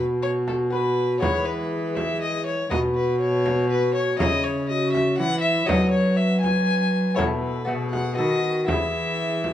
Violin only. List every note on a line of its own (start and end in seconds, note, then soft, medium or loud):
0.22 0.30 C#5 loud
0.48 0.56 A4 medium
0.72 1.20 B4 loud
1.20 1.47 C#5 loud
1.45 1.97 B4 medium
1.96 2.21 E5 medium
2.22 2.46 D#5 loud
2.46 2.70 C#5 loud
2.71 2.79 D#5 loud
2.95 3.20 B4 medium
3.21 3.69 C#5 medium
3.69 3.94 B4 loud
3.95 4.18 C#5 loud
4.19 4.45 D#5 loud
4.43 4.69 C#5 medium
4.69 4.92 D#5 loud
4.92 5.18 E5 medium
5.18 5.40 F#5 loud
5.41 5.68 E5 loud
5.67 5.90 D#5 loud
5.91 6.18 C#5 loud
6.17 6.41 E5 loud
6.41 7.15 G#5 loud
7.16 7.24 C#5 loud
7.39 7.90 B4 medium
7.91 8.15 F#5 medium
8.16 8.66 D#5 loud
8.67 9.53 E5 loud